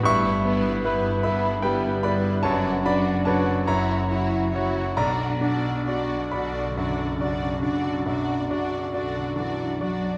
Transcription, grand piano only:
\new Staff \with { instrumentName = "Grand piano" } { \time 12/8 \key b \minor \tempo 4. = 46 << { <e'' cis'''>4. <e'' b''>8 <b' g''>8 <d'' b''>8 <cis'' a''>8 <d'' b''>8 <cis'' a''>8 <cis'' ais''>4. | <d'' ais''>4. b''1 r8 | } \\ { g,8 b8 <e' b'>8 <e' b'>8 g8 <e' b'>8 fis,8 d'8 <fis' b'>8 fis,8 e'8 <fis' cis''>8 | b,,8 d'8 <fis' d''>8 <fis' d''>8 fis,8 <fis' d''>8 d'8 fis,8 <fis' d''>8 <fis' d''>8 d'8 <fis' d''>8 | } >> }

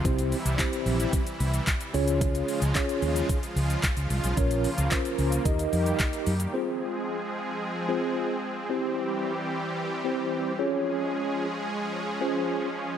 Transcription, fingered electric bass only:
\new Staff \with { instrumentName = "Fingered electric bass" } { \clef bass \time 4/4 \key f \minor \tempo 4 = 111 c,8. c,16 r8 bes,,8 r8 c,8 r8 des,8~ | des,8. des,16 r8 ees,8 r8 des,8 r16 des,16 c,16 b,,16 | bes,,8. des,16 r8 des,8 ees,8 f,8 r8 ges,8 | r1 |
r1 | r1 | }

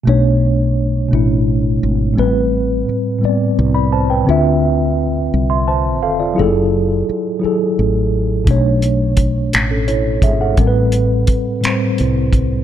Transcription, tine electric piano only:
\new Staff \with { instrumentName = "Tine electric piano" } { \time 6/8 \key a \major \tempo 4. = 57 << { r2. | r2 r16 <d'' b''>16 <c'' a''>16 <b' g''>16~ | <b' g''>16 r4. <e'' c'''>16 <c'' a''>8 <a' f''>16 <f' d''>16~ | <f' d''>16 r2 r8. |
r4. r16 <cis' a'>16 <e' cis''>8 <gis' e''>16 <a' fis''>16~ | <a' fis''>16 r2 r8. | } \\ { <b, a d' cis''>4~ <b, a d' cis''>16 r16 <b, a d' e'>4~ <b, a d' e'>16 r16 | <a, g c' b'>4~ <a, g c' b'>16 r16 <a, g b c' d''>4~ <a, g b c' d''>16 r16 | <d c' f' e''>4~ <d c' f' e''>16 r4. r16 | <fis e' gis' a'>4~ <fis e' gis' a'>16 r16 <fis e' gis' a'>4~ <fis e' gis' a'>16 r16 |
<b, a d' cis''>4~ <b, a d' cis''>16 r4. r16 | <a, g c' ais' b'>4~ <a, g c' ais' b'>16 r16 <a, g c' c''>4~ <a, g c' c''>16 r16 | } >> }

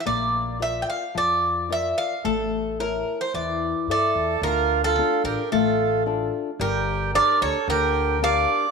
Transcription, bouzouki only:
\new Staff \with { instrumentName = "Bouzouki" } { \time 4/4 \key a \phrygian \tempo 4 = 110 d''4 e''16. g''32 f''8 d''4 e''8 f''8 | a'4 bes'8. c''16 d''4 d''4 | \key d \minor bes'8. a'8. bes'8 a'4 r4 | bes'4 d''8 cis''8 bes'4 f''4 | }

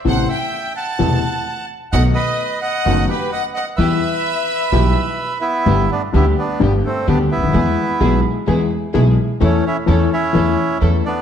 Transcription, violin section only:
\new Staff \with { instrumentName = "Violin section" } { \time 4/4 \key e \minor \tempo 4 = 128 fis''8 g''4 a''2 r8 | fis''8 dis''4 fis''4 b'8 fis''8 fis''8 | e''2.~ e''8 r8 | \key g \major r1 |
r1 | r1 | }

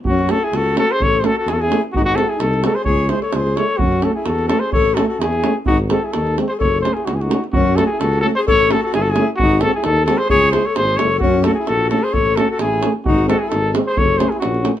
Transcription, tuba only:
\new Staff \with { instrumentName = "Tuba" } { \clef bass \time 2/4 \tempo 4 = 129 fis,4 cis,4 | a,,4 e,4 | gis,,4 bis,,4 | cis,4 cis,4 |
fis,4 e,4 | a,,4 e,4 | gis,,4 dis,4 | fis,,4 cis,4 |
fis,4 cis,4 | a,,4 g,,4 | gis,,4 dis,4 | cis,4 gis,,8 fis,,8 |
fis,4 ais,,4 | a,,4 a,,4 | gis,,4 gis,,4 | fis,,4 ais,,4 | }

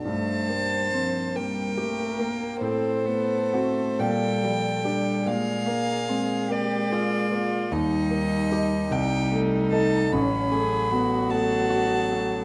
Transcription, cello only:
\new Staff \with { instrumentName = "Cello" } { \clef bass \time 6/8 \key g \minor \tempo 4. = 49 a8 g8 f8 g8 a8 bes8 | c'8 b8 a8 g8 f8 g8 | aes8 bes8 aes2 | g4. g4. |
\key fis \minor fis2. | }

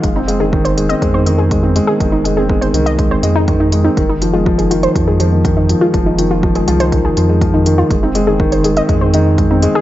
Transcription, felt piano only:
\new Staff \with { instrumentName = "Felt piano" } { \clef bass \time 4/4 \key aes \major \tempo 4 = 122 aes16 c'16 aes16 ees16 ees16 r16 aes16 c'16 aes16 ees16 ees16 r16 aes16 c'16 aes16 ees16 | ees16 r16 aes16 c'16 aes16 ees16 ees16 r16 aes16 c'16 aes16 ees16 ees16 r16 aes16 c'16 | ees16 r16 f16 aes16 f16 ees16 ees16 r16 f16 aes16 f16 ees16 ees16 r16 f16 aes16 | f16 ees16 ees16 r16 f16 aes16 f16 ees16 ees16 r16 f16 aes16 f16 ees16 ees16 r16 |
aes16 c'16 aes16 ees16 ees16 r16 aes16 c'16 aes16 ees16 ees16 r16 aes16 c'16 aes16 ees16 | }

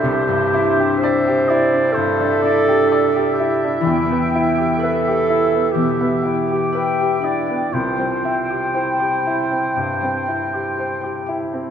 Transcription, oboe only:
\new Staff \with { instrumentName = "Oboe" } { \time 4/4 \key c \major \tempo 4 = 61 c''4 e''8 d''8 c''8 d''8 e''4~ | e''2~ e''8 r8 e''8 d''8 | c''2.~ c''8 r8 | }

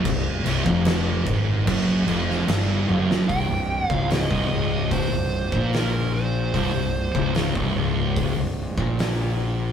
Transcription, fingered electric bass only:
\new Staff \with { instrumentName = "Fingered electric bass" } { \clef bass \time 4/4 \key c \phrygian \tempo 4 = 74 c,,8 c,,16 f,,8. aes,,8 fis,,8 f,,8 g,,8 fis,,8 | c,,16 c,,8 des,,8 c,,16 des,,8. c,,8 bes,,4~ bes,,16 | c,,16 c,,8 des,,8 c,,16 des,,8. c,,8 bes,,4~ bes,,16 | }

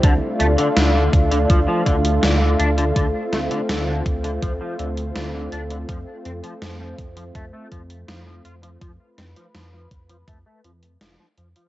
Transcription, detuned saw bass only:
\new Staff \with { instrumentName = "Detuned saw bass" } { \clef bass \time 4/4 \key d \dorian \tempo 4 = 82 d,8 d,8 d,8 d,8 d,8 d,8 d,8 d,8 | d,8 d,8 d,8 d,8 d,8 d,8 d,8 d,8 | f,8 f,8 f,8 f,8 f,8 f,8 f,8 f,8 | f,8 f,8 f,8 f,8 f,8 f,8 f,,8 f,8 | }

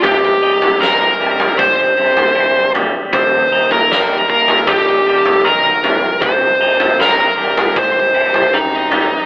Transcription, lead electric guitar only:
\new Staff \with { instrumentName = "Lead electric guitar" } { \time 4/4 \key c \minor \tempo 4 = 78 g'4 bes'4 c''4. r8 | c''8. bes'8. bes'8 g'4 bes'4 | c''4 bes'4 c''4 ees'4 | }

